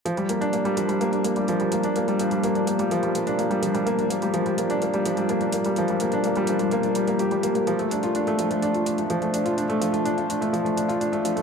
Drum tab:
HH |xxxxxxxxxxxxxxxx|xxxxxxxxxxxxxxxx|xxxxxxxxxxxxxxxx|xxxxxxxxxxxxxxxx|

HH |xxxxxxxxxxxxxxxx|xxxxxxxxxxxxxxxx|